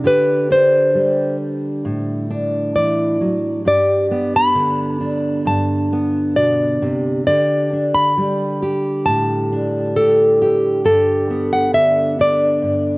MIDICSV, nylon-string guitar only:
0, 0, Header, 1, 2, 480
1, 0, Start_track
1, 0, Key_signature, 1, "major"
1, 0, Tempo, 899550
1, 17, Time_signature, 4, 2, 24, 8
1, 6925, End_track
2, 0, Start_track
2, 0, Title_t, "Nylon-string guitar"
2, 0, Program_c, 0, 24
2, 37, Note_on_c, 0, 71, 84
2, 274, Note_off_c, 0, 71, 0
2, 277, Note_on_c, 0, 72, 68
2, 726, Note_off_c, 0, 72, 0
2, 1470, Note_on_c, 0, 74, 78
2, 1929, Note_off_c, 0, 74, 0
2, 1961, Note_on_c, 0, 74, 84
2, 2325, Note_off_c, 0, 74, 0
2, 2327, Note_on_c, 0, 83, 92
2, 2917, Note_off_c, 0, 83, 0
2, 2919, Note_on_c, 0, 81, 88
2, 3374, Note_off_c, 0, 81, 0
2, 3395, Note_on_c, 0, 74, 82
2, 3873, Note_off_c, 0, 74, 0
2, 3879, Note_on_c, 0, 74, 89
2, 4240, Note_on_c, 0, 83, 90
2, 4245, Note_off_c, 0, 74, 0
2, 4831, Note_off_c, 0, 83, 0
2, 4833, Note_on_c, 0, 81, 87
2, 5288, Note_off_c, 0, 81, 0
2, 5317, Note_on_c, 0, 69, 77
2, 5769, Note_off_c, 0, 69, 0
2, 5793, Note_on_c, 0, 69, 84
2, 6151, Note_on_c, 0, 78, 90
2, 6158, Note_off_c, 0, 69, 0
2, 6258, Note_off_c, 0, 78, 0
2, 6266, Note_on_c, 0, 76, 85
2, 6510, Note_off_c, 0, 76, 0
2, 6515, Note_on_c, 0, 74, 90
2, 6925, Note_off_c, 0, 74, 0
2, 6925, End_track
0, 0, End_of_file